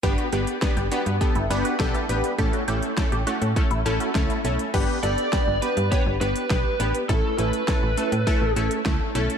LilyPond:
<<
  \new Staff \with { instrumentName = "Lead electric guitar" } { \time 4/4 \key g \lydian \tempo 4 = 102 r1 | r1 | r8 d''4 b'8 cis''8 b'4 b'8 | a'8 b'2 r4. | }
  \new Staff \with { instrumentName = "Synth arpeggio sound" } { \time 4/4 \key g \lydian g'16 fis'16 g'8 r16 g'16 fis'8 r16 e'8 fis'8 e'8 r16 | g'16 fis'16 g'8 r16 g'16 fis'8 r16 e'8 fis'8 e'8 r16 | r1 | r1 | }
  \new Staff \with { instrumentName = "Analog polysynth" } { \time 4/4 \key g \lydian <b d' g' b'>8 <b d' g' b'>8 <b d' g' b'>8 <b d' g' b'>8 <b d' g' a'>8 <b d' g' b'>8 <b d' g' a'>8 <b d' g' b'>8 | <a cis' e' a'>8 <a cis' e' a'>8 <a cis' e' a'>8 <a cis' e' a'>8 <a cis' e' a'>8 <a cis' e' a'>8 <a cis' e' a'>8 <a cis' e' a'>8 | <b d' g' b'>8 <b d' g' a'>8 <b d' g' b'>8 <b d' g' b'>8 <b d' g' b'>8 <b d' g' b'>8 <b d' g' b'>8 <b d' g' b'>8 | <a cis' e' a'>8 <a cis' e' a'>8 <a cis' e' a'>8 <a cis' e' a'>8 <a cis' e' a'>8 <a cis' e' a'>8 <a cis' e' a'>8 <a cis' e' a'>8 | }
  \new Staff \with { instrumentName = "FM bass" } { \clef bass \time 4/4 \key g \lydian g,,16 r16 g,,16 r8 g,,16 r16 g,16 r16 g,,16 g,,16 r16 b,,16 r16 a,,16 r16 | a,,16 r16 a,,16 r8 a,,16 r16 a,16 r16 a,,16 a,,16 r16 cis,16 r16 b,,16 r16 | g,,16 r16 g,,16 r8 g,,16 r16 g,16 r16 g,,16 g,,16 r16 b,,16 r16 a,,16 r16 | a,,16 r16 a,,16 r8 a,,16 r16 a,16 r16 a,,16 a,,16 r16 cis,16 r16 b,,16 r16 | }
  \new DrumStaff \with { instrumentName = "Drums" } \drummode { \time 4/4 <hh bd>16 hh16 hh16 hh16 <hh bd sn>16 hh16 hh16 hh16 <hh bd>16 hh16 hh16 hh16 <hh bd sn>16 hh16 hh16 hh16 | <hh bd>16 hh16 hh16 hh16 <hh bd sn>16 hh16 hh16 hh16 <hh bd>16 hh16 hh16 hh16 <hh bd sn>16 hh16 hh16 hh16 | <cymc hh bd>8 hh16 hh16 <hh bd sn>8 hh16 hh16 <hh bd>8 hh16 hh16 <hh bd sn>8 hh16 hh16 | <hh bd>8 hh16 hh16 <hh bd sn>8 hh16 hh16 <hh bd>8 hh16 hh16 <hh bd sn>8 hh16 hh16 | }
>>